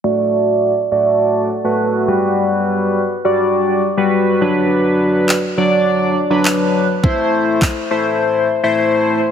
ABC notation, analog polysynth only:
X:1
M:4/4
L:1/16
Q:1/4=103
K:Dmix
V:1 name="Analog polysynth"
[A,Fd]4- [A,Fd] z [A,Fd]4 z [A,FB]3 [G,FB]2- | [G,FB]4 z2 [G,Fd]4 z [G,FB]3 [F,DB]2- | [F,DB]4 z2 [F,Dd]4 z [F,DB]4 z | [A,Ec]4- [A,Ec] z [A,Ec]4 z [A,Ec]4 z |]